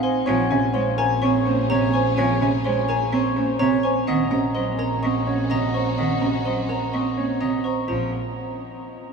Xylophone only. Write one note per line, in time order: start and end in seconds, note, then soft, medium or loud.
0.03 0.34 C6 medium
0.27 0.58 G#5 medium
0.74 1.05 C6 medium
0.98 1.29 A#5 loud
1.22 1.53 C#6 medium
1.70 2.01 A#5 loud
1.93 2.24 C#6 medium
2.17 2.48 G#5 medium
2.64 2.96 C6 medium
2.89 3.19 A#5 loud
3.13 3.43 C#6 medium
3.59 3.91 A#5 loud
3.83 4.15 C#6 medium
4.07 4.38 F#5 medium
4.55 4.86 C6 medium
4.79 5.10 A#5 loud
5.03 5.34 C#6 medium
5.51 5.82 A#5 loud
5.74 6.05 C#6 medium
5.98 6.29 F#5 medium
6.46 6.77 C6 medium
6.69 7.00 A#5 loud
6.93 7.24 C#6 medium
7.41 7.72 A#5 loud
7.64 7.95 C#6 medium
7.88 8.10 A#5 medium